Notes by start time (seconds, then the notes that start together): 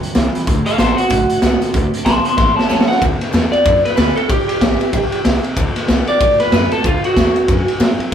Already playing: G2 D3 F#3
0.03 muted upright bass stroke, closed hi-hat
0.15 C2 G2 C3 E3, snare, closed hi-hat
0.35 G2 E3, snare, closed hi-hat
0.47 D2 D3 A3, kick, closed hi-hat
0.66 A4 F5, closed hi-hat
0.78 A1 D3 A3 B3 F#4 A4 C5, snare, closed hi-hat
0.97 D3 B3 F#4, closed hi-hat
1.10 B1 A2 D3 A3, kick, closed hi-hat
1.30 closed hi-hat
1.42 C2 D3 A3 B3 F#4, snare, closed hi-hat
1.61 D3 B3 F#4, muted upright bass stroke, snare, closed hi-hat
1.74 D2 C3 D3 A3, kick, closed hi-hat
1.93 muted upright bass stroke, closed hi-hat
2.05 B1 B2 D3 B3 A5 C6, kick, snare, closed hi-hat
2.25 D3 B3 A5 C6, closed hi-hat
2.37 A1 A2 E3 E5 C6, kick, snare
2.56 C#5 A5, snare
2.69 E2 A2 E3 F#3 A3 C#4 F#4 C#5 A5, snare
2.81 snare
2.88 A2 F#3 C#4 F#4 F#5, muted upright bass stroke, snare
3.01 D2 D3, kick, ride
3.21 snare, ride
3.33 E2 D3 A3 B3 F#4, snare, ride
3.52 B3 F#4 D5, muted upright bass stroke, ride
3.65 F#2 A2, kick, snare, ride
3.85 B4, muted upright bass stroke, snare, ride
3.96 D2 D3 A3 B3 F#4 B4, snare, ride
4.16 B3 F#4 A4, muted upright bass stroke, ride
4.29 G1 G3 G4, kick, ride
4.48 G4, muted upright bass stroke, ride
4.61 A1 G3 B3 E4, kick, snare, ride
4.80 B3 E4, ride
4.93 B1 G3, kick, ride
5.12 ride
5.25 C2 C3, snare, ride
5.44 muted upright bass stroke, ride
5.56 D2 D3, kick, ride
5.76 muted upright bass stroke, snare, ride
5.88 C2 D3 A3 B3 F#4, snare, ride
6.07 B3 F#4 D5, muted upright bass stroke, ride
6.21 A2, kick, ride
6.40 B4, snare, ride
6.52 F#2 D3 A3 B3 F#4 B4, snare, ride
6.71 B3 F#4 A4, muted upright bass stroke, ride
6.84 D2 D3 F4, kick, ride
7.04 F#4, muted upright bass stroke, ride
7.16 E2 D3 A3 B3 F#4, kick, snare, ride
7.36 B3 F#4, muted upright bass stroke, ride
7.48 F#2 E3, kick, snare, ride
7.67 muted upright bass stroke, ride
7.80 A2 F#3, snare, ride
7.99 muted upright bass stroke, ride